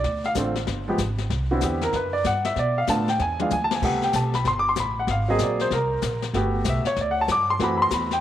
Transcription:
Already playing: upright piano D5
0.04 upright bass D2, brush sweep, kick, snare
0.24 upright piano F5, snare
0.35 upright bass A1, upright piano D3 A3 C4 F4, kick, snare, hi-hat pedal
0.55 snare
0.67 upright bass G1, brush sweep, kick, snare
0.88 upright piano F3 G#3 B3 G4
0.98 upright bass G#1, kick, snare, hi-hat pedal
1.18 snare
1.30 upright bass C2, brush sweep, kick, snare
1.51 upright piano D3 B3 C4 E4 F#4
1.61 upright bass E2, upright piano G4, kick, snare, hi-hat pedal
1.81 upright piano A#4, snare
1.93 upright bass F#2, upright piano B4, brush sweep, kick, snare
2.13 upright piano D5
2.24 upright bass G2, upright piano F#5, kick, snare, hi-hat pedal
2.45 upright piano E5, snare
2.56 upright bass B2, upright piano D5, brush sweep, kick, snare
2.78 upright piano F5
2.87 upright bass A2, upright piano D3 A3 B3 F4 A5, kick, snare, hi-hat pedal
3.08 upright piano G5, snare
3.19 upright bass E2, upright piano G#5, snare
3.40 upright piano E3 G#3 D4 F4 F5, mid tom
3.50 upright bass D2, upright piano G#5, hi-hat pedal, mid tom
3.64 upright piano A5
3.71 upright piano G#5, snare
3.82 upright bass C2, upright piano C3 A3 B3 G4 F#5, brush sweep, kick, snare, crash
4.02 upright piano G5, snare
4.13 upright bass B1, upright piano A5, kick, snare, hi-hat pedal
4.34 upright piano B5, snare
4.45 upright bass G1, upright piano C6, brush sweep, kick, snare
4.59 upright piano D6
4.69 upright piano C6
4.76 upright bass A1, kick, snare, hi-hat pedal
4.80 upright piano B5
4.99 upright piano F#5
5.07 upright bass G#1, upright piano F5, brush sweep, kick, snare
5.28 upright piano F#3 A#3 C4 G#4 D#5
5.39 upright bass A#1, upright piano D5, kick, snare, hi-hat pedal
5.59 upright piano C5, snare
5.70 upright bass C2, upright piano A#4, brush sweep, kick, snare
6.02 upright bass A#1, kick, snare, hi-hat pedal
6.22 snare
6.34 upright bass G1, upright piano A3 B3 F#4 G4, brush sweep, kick, snare
6.64 upright bass B1, kick, snare, hi-hat pedal
6.69 upright piano E5
6.85 upright piano C#5, muted upright bass stroke, snare
6.96 upright bass D2, brush sweep, kick, snare
7.01 upright piano D5
7.11 upright piano F#5
7.21 upright piano A5
7.28 upright bass G2, kick, snare, hi-hat pedal
7.32 upright piano D6
7.50 upright piano C6
7.59 upright bass F#2, upright piano E3 A3 C4 F#4, brush sweep, kick, snare
7.64 upright piano B5
7.77 upright piano B5
7.82 upright piano C6
7.90 upright bass E2, upright piano B5, kick, snare, hi-hat pedal
8.11 upright piano G5, snare

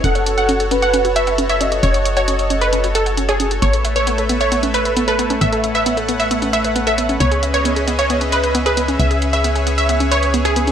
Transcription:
Already playing: supersaw synth C#5
0.04 analog synth bass F#1, synth arpeggio sound C#4, supersaw synth F#4 A4 F#5, soft synth lead A4, closed hi-hat
0.15 synth arpeggio sound C#5, closed hi-hat
0.26 synth arpeggio sound C#6, closed hi-hat
0.38 synth arpeggio sound F#5, supersaw synth F#5, closed hi-hat
0.49 synth arpeggio sound C#4, closed hi-hat
0.60 synth arpeggio sound C#5, closed hi-hat
0.71 synth arpeggio sound C#4, soft synth lead B4, closed hi-hat
0.82 supersaw synth F#5, synth arpeggio sound C#6, closed hi-hat
0.94 synth arpeggio sound C#4, closed hi-hat
1.05 synth arpeggio sound F#4, closed hi-hat
1.16 supersaw synth E5, synth arpeggio sound F#5, closed hi-hat
1.27 synth arpeggio sound F#5, closed hi-hat
1.38 synth arpeggio sound C#4, closed hi-hat
1.49 synth arpeggio sound C#5, supersaw synth E5, closed hi-hat
1.61 synth arpeggio sound C#4, soft synth lead D#5, closed hi-hat
1.72 synth arpeggio sound F#4, closed hi-hat
1.83 analog synth bass F#1, synth arpeggio sound C#4, supersaw synth C#5, closed hi-hat
1.94 synth arpeggio sound C#5, closed hi-hat
2.05 synth arpeggio sound C#6, closed hi-hat
2.17 supersaw synth C#5, synth arpeggio sound F#5, closed hi-hat
2.28 synth arpeggio sound C#4, closed hi-hat
2.39 synth arpeggio sound C#5, closed hi-hat
2.50 synth arpeggio sound C#4, closed hi-hat
2.61 supersaw synth B4, synth arpeggio sound C#6, closed hi-hat
2.73 synth arpeggio sound C#4, closed hi-hat
2.84 synth arpeggio sound F#4, closed hi-hat
2.95 supersaw synth A4, synth arpeggio sound F#5, closed hi-hat
3.06 synth arpeggio sound F#5, closed hi-hat
3.17 synth arpeggio sound C#4, closed hi-hat
3.29 supersaw synth G#4, synth arpeggio sound C#5, closed hi-hat
3.40 synth arpeggio sound C#4, closed hi-hat
3.51 synth arpeggio sound F#4, closed hi-hat
3.62 analog synth bass A1, supersaw synth A3 B4 C#5 E5, synth arpeggio sound B3, closed hi-hat
3.73 synth arpeggio sound A4, closed hi-hat
3.85 synth arpeggio sound E5, closed hi-hat
3.96 synth arpeggio sound B4, supersaw synth C#5, closed hi-hat
4.07 synth arpeggio sound B3, closed hi-hat
4.18 synth arpeggio sound A4, closed hi-hat
4.29 synth arpeggio sound B3, closed hi-hat
4.41 supersaw synth C#5, synth arpeggio sound E5, closed hi-hat
4.52 synth arpeggio sound B3, closed hi-hat
4.63 synth arpeggio sound C#4, closed hi-hat
4.74 supersaw synth B4, synth arpeggio sound B4, closed hi-hat
4.85 synth arpeggio sound B4, closed hi-hat
4.97 synth arpeggio sound B3, closed hi-hat
5.08 synth arpeggio sound A4, supersaw synth B4, closed hi-hat
5.19 synth arpeggio sound B3, closed hi-hat
5.30 synth arpeggio sound C#4, closed hi-hat
5.41 analog synth bass A1, synth arpeggio sound B3, supersaw synth E5 F#5, closed hi-hat
5.53 synth arpeggio sound A4, closed hi-hat
5.64 synth arpeggio sound E5, closed hi-hat
5.75 synth arpeggio sound B4, supersaw synth E5, closed hi-hat
5.86 synth arpeggio sound B3, closed hi-hat
5.97 synth arpeggio sound A4, closed hi-hat
6.09 synth arpeggio sound B3, closed hi-hat
6.20 supersaw synth E5, synth arpeggio sound E5, closed hi-hat
6.31 synth arpeggio sound B3, closed hi-hat
6.42 synth arpeggio sound C#4, closed hi-hat
6.53 synth arpeggio sound B4, supersaw synth E5, closed hi-hat
6.64 synth arpeggio sound B4, closed hi-hat
6.76 synth arpeggio sound B3, closed hi-hat
6.87 synth arpeggio sound A4, supersaw synth E5, closed hi-hat
6.98 synth arpeggio sound B3, closed hi-hat
7.09 synth arpeggio sound C#4, closed hi-hat
7.20 analog synth bass C#2, synth arpeggio sound B3, supersaw synth C#4 G#4 C#5 D#5 E5, closed hi-hat
7.32 synth arpeggio sound G#4, closed hi-hat
7.43 synth arpeggio sound E5, closed hi-hat
7.54 synth arpeggio sound B4, supersaw synth C#5, closed hi-hat
7.65 synth arpeggio sound B3, closed hi-hat
7.76 synth arpeggio sound G#4, closed hi-hat
7.88 synth arpeggio sound B3, closed hi-hat
7.99 supersaw synth C#5, synth arpeggio sound E5, closed hi-hat
8.10 synth arpeggio sound B3, closed hi-hat
8.21 synth arpeggio sound C#4, closed hi-hat
8.32 supersaw synth B4, synth arpeggio sound B4, closed hi-hat
8.44 synth arpeggio sound B4, closed hi-hat
8.55 synth arpeggio sound B3, closed hi-hat
8.66 synth arpeggio sound G#4, supersaw synth B4, closed hi-hat
8.77 synth arpeggio sound B3, closed hi-hat
8.88 synth arpeggio sound C#4, closed hi-hat
8.99 analog synth bass C#2, synth arpeggio sound B3, supersaw synth C#5 E5, closed hi-hat
9.11 synth arpeggio sound G#4, closed hi-hat
9.22 synth arpeggio sound E5, closed hi-hat
9.33 synth arpeggio sound B4, supersaw synth E5, closed hi-hat
9.44 synth arpeggio sound B3, closed hi-hat
9.55 synth arpeggio sound G#4, closed hi-hat
9.67 synth arpeggio sound B3, closed hi-hat
9.78 supersaw synth E5, synth arpeggio sound E5, closed hi-hat
9.89 synth arpeggio sound B3, closed hi-hat
10.00 synth arpeggio sound C#4, closed hi-hat
10.11 synth arpeggio sound B4, supersaw synth C#5, closed hi-hat
10.23 synth arpeggio sound B4, closed hi-hat
10.34 synth arpeggio sound B3, closed hi-hat
10.45 synth arpeggio sound G#4, supersaw synth G#4, closed hi-hat
10.56 synth arpeggio sound B3, closed hi-hat
10.67 synth arpeggio sound C#4, closed hi-hat

